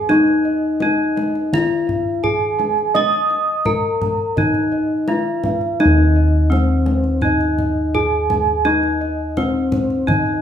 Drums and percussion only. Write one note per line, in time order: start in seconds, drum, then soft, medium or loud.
0.10 kendang high medium
0.27 kendang slap soft
0.45 kendang slap soft
0.80 kendang slap soft
0.80 kendang high medium
1.17 kendang high soft
1.35 kendang slap soft
1.54 kendang slap soft
1.54 kendang low medium
1.89 kendang slap soft
1.89 kendang low medium
2.24 kendang slap soft
2.24 kendang low medium
2.60 kendang slap soft
2.60 kendang high soft
2.78 kendang slap soft
2.95 kendang high medium
3.13 kendang slap soft
3.30 kendang slap soft
3.65 kendang slap soft
3.65 kendang high medium
3.65 kendang low medium
4.01 kendang high soft
4.01 kendang low medium
4.37 kendang slap soft
4.37 kendang low medium
4.55 kendang slap soft
4.72 kendang slap soft
5.08 kendang slap soft
5.08 kendang high medium
5.44 kendang slap soft
5.44 kendang high soft
5.44 kendang low soft
5.61 kendang slap soft
5.80 kendang high soft
5.98 kendang slap soft
6.16 kendang slap soft
6.52 kendang slap soft
6.52 kendang high medium
6.86 kendang high medium
7.04 kendang slap soft
7.22 kendang slap soft
7.22 kendang low medium
7.41 kendang slap soft
7.58 kendang slap soft
7.58 kendang low medium
7.95 kendang slap soft
7.95 kendang low medium
8.30 kendang slap soft
8.30 kendang high medium
8.30 kendang low soft
8.48 kendang slap soft
8.65 kendang high soft
8.83 kendang slap soft
9.01 kendang slap soft
9.37 kendang slap soft
9.37 kendang high medium
9.37 kendang low soft
9.72 kendang high soft
9.72 kendang low soft
9.90 kendang slap soft
10.08 kendang slap soft
10.08 kendang low medium
10.26 kendang slap soft